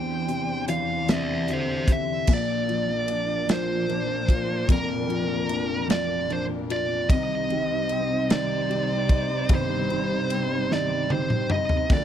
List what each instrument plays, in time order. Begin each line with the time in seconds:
Already playing: string section E2 E3 D4 C5, felt piano E2, steel-string acoustic guitar E3 C4 D4 G4, lead electric guitar G5
0.28 felt piano C3, closed hi-hat
0.68 steel-string acoustic guitar E3 C4 D4 G4, felt piano E3, lead electric guitar F5, closed hi-hat
1.08 felt piano C3, steel-string acoustic guitar E3 C4 D4 G4, lead electric guitar E5, snare, closed hi-hat
1.13 lead electric guitar D5
1.48 felt piano D3, closed hi-hat
1.53 lead electric guitar C5
1.88 felt piano C3, steel-string acoustic guitar C4 D4 G4, kick, closed hi-hat
1.92 lead electric guitar E5
2.27 felt piano A#1 A#2, steel-string acoustic guitar A#2 F3 A#3 D4 F4, string section A#2 F3 D4 A#4, kick, crash
2.33 lead electric guitar D5
2.68 steel-string acoustic guitar F3 A#3 D4 F4, felt piano F3, ride
2.87 steel-string acoustic guitar A#3 D4 F4
3.08 felt piano D4, ride
3.27 steel-string acoustic guitar A#3 D4 F4
3.46 steel-string acoustic guitar A#2 F3 A#3 D4 F4, felt piano F4, snare, ride
3.52 lead electric guitar C5
3.87 steel-string acoustic guitar F3 A#3 D4 F4, felt piano D4, ride
4.06 steel-string acoustic guitar A#3 D4 F4
4.29 felt piano F4, kick, ride
4.47 steel-string acoustic guitar A#3 D4 F4
4.67 felt piano F1 F2, steel-string acoustic guitar A#2 F3 A#3 D4 F4, kick, ride
4.72 lead electric guitar A#4
5.06 steel-string acoustic guitar F3 A#3 D4 F4, felt piano F3, ride
5.26 steel-string acoustic guitar A#3 D4 F4
5.49 felt piano D4, ride
5.66 steel-string acoustic guitar A#3 D4 F4
5.87 steel-string acoustic guitar A#2 F3 A#3 D4 F4, felt piano F4, lead electric guitar D5, snare, ride
6.27 steel-string acoustic guitar F3 A#3 D4 F4, felt piano D4, ride
6.33 lead electric guitar C5
6.47 steel-string acoustic guitar A#3 D4 F4
6.70 felt piano F4, lead electric guitar D5, ride
6.88 steel-string acoustic guitar A#3 D4 F4
7.08 felt piano C2 C3, steel-string acoustic guitar C3 D#3 C4 D#4 G4, string section C3 G3 D#4 C5, lead electric guitar D#5, kick, ride
7.49 steel-string acoustic guitar D#3 C4 D#4 G4, felt piano G3, ride
7.69 steel-string acoustic guitar C4 D#4 G4
7.89 felt piano C4, ride
8.10 steel-string acoustic guitar C4 D#4 G4
8.29 steel-string acoustic guitar C3 D#3 C4 D#4 G4, felt piano D#4, lead electric guitar D5, snare, ride
8.70 steel-string acoustic guitar D#3 C4 D#4 G4, felt piano G4, ride
8.91 steel-string acoustic guitar C4 D#4 G4
9.09 felt piano D#4, kick, ride
9.30 steel-string acoustic guitar C4 D#4 G4
9.49 felt piano G1 G2, steel-string acoustic guitar C3 D#3 C4 D#4 G4, kick, ride
9.55 lead electric guitar C5
9.90 steel-string acoustic guitar D#3 C4 D#4 G4, felt piano G3, ride
10.10 steel-string acoustic guitar C4 D#4 G4
10.30 felt piano C4, ride
10.50 steel-string acoustic guitar C4 D#4 G4
10.69 steel-string acoustic guitar C3 D#3 C4 D#4 G4, felt piano D#4, snare
10.73 lead electric guitar D5
11.09 steel-string acoustic guitar D#3 C4 D#4 G4, felt piano G4, lead electric guitar C5, high tom
11.30 steel-string acoustic guitar C4 D#4 G4, mid tom
11.50 felt piano D#4, lead electric guitar D#5, mid tom
11.69 steel-string acoustic guitar D#4 G4, floor tom
11.74 steel-string acoustic guitar C4
11.88 string section D2 D3 F4 A#4, felt piano D2 D3, steel-string acoustic guitar D3 F3 A#3, kick, splash
11.93 steel-string acoustic guitar D4 F4, lead electric guitar D5